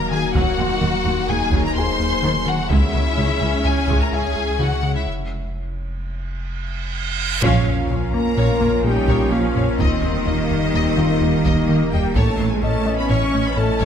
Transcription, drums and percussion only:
0.35 taiko medium
1.53 taiko medium
2.70 taiko medium
3.88 taiko medium
7.43 taiko medium
8.14 taiko low soft
8.61 taiko low soft
9.08 taiko medium
9.55 taiko low soft
9.79 taiko loud
10.50 taiko low soft
10.98 taiko low soft
11.45 taiko medium
11.92 taiko low soft
12.15 taiko medium
13.81 taiko medium

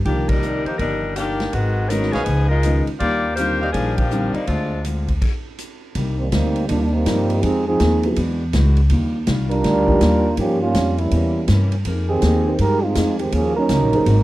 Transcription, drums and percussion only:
0.05 kick soft
0.05 ride medium
0.29 kick medium
0.29 ride medium
0.42 hi-hat pedal medium
0.66 ride soft
0.79 kick soft
0.79 ride medium
1.16 hi-hat pedal soft
1.16 ride medium
1.40 snare soft
1.40 ride soft
1.53 kick soft
1.53 ride medium
1.90 hi-hat pedal medium
1.90 ride medium
2.02 snare soft
2.13 snare soft
2.13 ride soft
2.26 kick soft
2.26 ride medium
2.63 hi-hat pedal medium
2.63 ride medium
2.87 ride soft
3.00 kick soft
3.00 ride medium
3.37 hi-hat pedal medium
3.37 ride medium
3.74 kick soft
3.74 ride medium
3.98 kick medium
3.98 ride medium
4.11 hi-hat pedal medium
4.34 ride soft
4.47 kick soft
4.47 ride medium
4.85 hi-hat pedal soft
4.85 ride medium
5.08 kick soft
5.08 ride soft
5.22 kick medium
5.22 crash medium
5.22 ride medium
5.59 hi-hat pedal soft
5.59 ride medium
5.95 kick soft
5.95 ride medium
6.32 kick soft
6.32 snare medium
6.32 hi-hat pedal soft
6.32 ride medium
6.56 ride soft
6.69 kick soft
6.69 ride medium
7.06 kick soft
7.06 snare medium
7.06 hi-hat pedal medium
7.06 ride medium
7.30 ride soft
7.43 kick soft
7.43 ride medium
7.80 kick soft
7.80 snare medium
7.80 hi-hat pedal medium
7.80 ride medium
8.03 ride soft
8.16 kick soft
8.16 ride medium
8.53 kick soft
8.53 snare medium
8.53 hi-hat pedal medium
8.53 ride medium
8.77 ride soft
8.90 kick soft
8.90 ride medium
9.27 kick soft
9.27 snare medium
9.27 hi-hat pedal medium
9.27 ride medium
9.51 ride soft
9.64 kick soft
9.64 snare soft
9.64 ride medium
9.88 kick medium
10.01 kick soft
10.01 snare medium
10.01 hi-hat pedal medium
10.01 ride medium
10.37 kick soft
10.37 ride medium
10.75 kick soft
10.75 snare medium
10.75 hi-hat pedal medium
10.75 ride medium
10.98 ride soft
11.11 kick soft
11.11 ride medium
11.48 kick soft
11.48 snare medium
11.48 hi-hat pedal medium
11.48 ride medium
11.72 ride soft
11.85 kick soft
11.85 ride medium
12.22 kick soft
12.22 snare medium
12.22 hi-hat pedal medium
12.22 ride medium
12.59 kick soft
12.59 ride medium
12.95 kick soft
12.95 snare medium
12.95 hi-hat pedal medium
12.95 ride medium
13.19 ride soft
13.32 kick soft
13.32 ride medium
13.69 kick soft
13.69 snare medium
13.69 hi-hat pedal medium
13.69 ride medium
13.93 ride soft
14.06 kick soft
14.06 ride medium

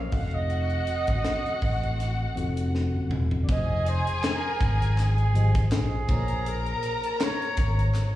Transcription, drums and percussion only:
0.12 kick loud
0.12 open hi-hat soft
0.31 closed hi-hat soft
0.50 closed hi-hat medium
0.70 closed hi-hat soft
0.87 closed hi-hat medium
1.07 kick medium
1.07 closed hi-hat soft
1.24 snare medium
1.24 closed hi-hat medium
1.46 closed hi-hat soft
1.61 kick medium
1.61 open hi-hat soft
1.83 closed hi-hat soft
2.00 snare soft
2.00 closed hi-hat medium
2.37 closed hi-hat medium
2.57 closed hi-hat medium
2.75 snare soft
3.11 mid tom medium
3.31 floor tom medium
3.48 kick loud
3.48 closed hi-hat medium
3.86 closed hi-hat medium
4.07 closed hi-hat medium
4.23 snare loud
4.23 clap medium
4.23 closed hi-hat medium
4.60 kick medium
4.60 closed hi-hat medium
4.82 closed hi-hat soft
4.98 snare soft
4.98 clap medium
4.98 closed hi-hat medium
5.18 closed hi-hat soft
5.35 closed hi-hat medium
5.55 kick medium
5.55 closed hi-hat medium
5.71 snare loud
5.71 clap medium
5.71 closed hi-hat medium
6.08 kick loud
6.08 closed hi-hat medium
6.28 closed hi-hat soft
6.46 closed hi-hat medium
6.66 closed hi-hat soft
6.83 closed hi-hat medium
7.03 closed hi-hat medium
7.20 snare loud
7.20 clap medium
7.20 closed hi-hat medium
7.42 closed hi-hat soft
7.57 kick medium
7.57 closed hi-hat medium
7.79 closed hi-hat medium
7.94 snare soft
7.94 clap medium
7.94 closed hi-hat medium

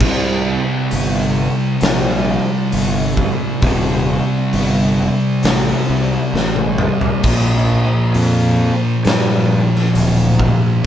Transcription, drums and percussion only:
0.01 kick loud
0.01 crash loud
0.91 open hi-hat medium
1.81 snare loud
1.81 open hi-hat medium
2.72 open hi-hat medium
3.17 kick medium
3.62 kick loud
3.62 open hi-hat medium
4.53 open hi-hat medium
5.43 snare loud
5.43 open hi-hat medium
6.36 snare medium
6.56 high tom medium
6.78 mid tom medium
7.01 floor tom loud
7.23 kick loud
7.23 crash loud
8.14 open hi-hat medium
9.05 snare loud
9.05 open hi-hat medium
9.75 snare soft
9.95 open hi-hat medium
10.40 kick medium

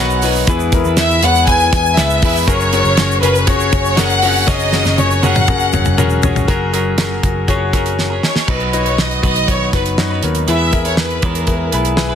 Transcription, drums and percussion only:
0.10 shaker soft
0.22 open hi-hat medium
0.22 shaker medium
0.36 shaker medium
0.47 kick loud
0.47 closed hi-hat medium
0.47 shaker medium
0.60 shaker medium
0.72 kick medium
0.72 closed hi-hat medium
0.72 shaker medium
0.85 shaker soft
0.97 snare loud
0.97 closed hi-hat medium
0.97 shaker medium
1.11 shaker medium
1.22 closed hi-hat medium
1.22 shaker medium
1.35 shaker soft
1.47 kick medium
1.47 closed hi-hat medium
1.47 shaker medium
1.60 shaker soft
1.73 kick medium
1.73 snare soft
1.73 closed hi-hat medium
1.73 shaker medium
1.86 shaker soft
1.97 snare loud
1.97 closed hi-hat medium
1.97 shaker medium
2.10 shaker medium
2.22 kick loud
2.22 open hi-hat medium
2.22 shaker medium
2.37 shaker medium
2.48 kick loud
2.48 closed hi-hat medium
2.48 shaker medium
2.60 shaker medium
2.73 closed hi-hat medium
2.73 shaker medium
2.85 shaker soft
2.97 snare loud
2.97 closed hi-hat medium
2.97 shaker medium
3.11 shaker medium
3.23 closed hi-hat medium
3.23 shaker medium
3.35 shaker soft
3.47 kick medium
3.47 closed hi-hat medium
3.47 shaker medium
3.60 shaker soft
3.72 kick medium
3.72 closed hi-hat medium
3.72 shaker medium
3.85 shaker soft
3.97 snare loud
3.97 closed hi-hat medium
3.97 shaker medium
4.10 shaker medium
4.22 open hi-hat medium
4.22 shaker medium
4.36 shaker soft
4.48 kick loud
4.48 snare medium
4.48 shaker medium
4.60 shaker medium
4.72 snare medium
4.72 shaker medium
4.85 snare medium
4.85 shaker soft
4.98 high tom medium
4.98 shaker medium
5.11 shaker medium
5.23 high tom medium
5.23 shaker medium
5.35 mid tom medium
5.35 shaker soft
5.47 kick medium
5.47 mid tom medium
5.47 shaker medium
5.60 shaker soft
5.72 mid tom medium
5.72 shaker medium
5.85 mid tom medium
5.85 shaker medium
5.98 mid tom loud
5.98 shaker medium
6.10 shaker medium
6.23 floor tom loud
6.23 shaker medium
6.36 floor tom medium
6.36 shaker medium
6.48 kick loud
6.48 closed hi-hat medium
6.74 closed hi-hat medium
6.98 snare loud
6.98 closed hi-hat medium
7.23 kick medium
7.23 closed hi-hat medium
7.48 kick medium
7.48 closed hi-hat medium
7.73 kick medium
7.73 snare soft
7.73 closed hi-hat medium
7.86 closed hi-hat medium
7.99 snare medium
8.23 snare medium
8.36 snare medium
8.48 kick medium
8.48 crash medium
8.60 closed hi-hat soft
8.73 closed hi-hat medium
8.86 closed hi-hat soft
8.98 snare loud
9.11 closed hi-hat soft
9.23 kick medium
9.23 closed hi-hat medium
9.36 closed hi-hat soft
9.48 kick medium
9.48 closed hi-hat medium
9.73 kick medium
9.73 snare soft
9.73 closed hi-hat medium
9.86 closed hi-hat soft
9.98 snare loud
10.23 closed hi-hat medium
10.35 closed hi-hat soft
10.48 closed hi-hat medium
10.73 kick medium
10.73 closed hi-hat medium
10.85 closed hi-hat medium
10.97 snare medium
11.11 closed hi-hat soft
11.22 kick medium
11.22 closed hi-hat medium
11.35 closed hi-hat medium
11.47 kick medium
11.47 closed hi-hat medium
11.72 closed hi-hat medium
11.85 closed hi-hat soft
11.97 snare loud

